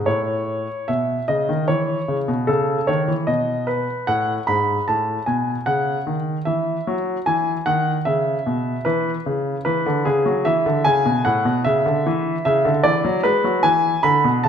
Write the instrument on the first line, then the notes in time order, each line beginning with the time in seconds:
grand piano
0.06 A2 C#5
0.88 B2 E5
1.28 C#3 D#5
1.49 D#3
1.68 E3 C#5
2.08 C#3
2.28 B2
2.47 C#3 A4
2.87 D#3 C#5
3.08 E3
3.27 B2 D#5
3.67 B4
4.07 A2 F#5
4.47 G#2 B5
4.88 A2 A5
5.26 B2 G#5
5.66 C#3 F#5
6.07 D#3
6.45 E3 E5
6.87 F#3
7.26 E3 G#5
7.66 D#3 F#5
8.05 C#3 E5
8.46 B2
8.85 E3 B4
9.26 C#3
9.65 E3 B4
9.86 D3
10.05 C#3 G#4
10.26 F#3
10.45 E3 E5
10.66 D3
10.84 C#3 G#5
11.06 B2
11.25 A2 F#5
11.45 B2
11.64 C#3 E5
11.86 D3
12.06 E3
12.45 C#3 E5
12.65 D3
12.84 E3 D5
13.04 F#3
13.23 G#3 B4
13.44 F#3
13.63 E3 G#5
14.03 D3 B5
14.24 B2
14.44 C#3 A5